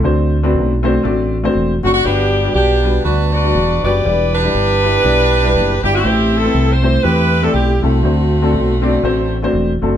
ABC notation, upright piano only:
X:1
M:4/4
L:1/16
Q:"Swing" 1/4=120
K:Dmix
V:1 name="Upright piano"
[A,CDFc]2 z [A,CDFB]2 z [A,CDFc] z [A,CDFd]2 z [A,CDFc]2 z [A,CDFA] z | [G,B,DFB]2 z [G,B,DFd]2 z [G,B,DFB] z [G,B,DFd]2 z [G,B,DFd]2 z [G,B,DFB] z | [G,B,DEB]2 z [G,B,DEB]2 z [G,B,DEB] z [G,B,DEd]2 z [G,B,DEB]2 z [G,B,DEG] z | [A,CEGc]2 z [A,CEGB]2 z [A,CEGc] z [A,CEGB]2 z [A,CEGd]2 z [A,CEGA] z |
[A,CDFc]2 z [A,CDFA]2 z [A,CDFd] z [A,CDFc]2 z [A,CDFc]2 z [A,CDFA] z |]
V:2 name="Upright piano" clef=bass
D,6 z8 z2 | G,,6 z8 z2 | E,6 z8 z2 | A,,6 z8 z2 |
D,6 z8 z2 |]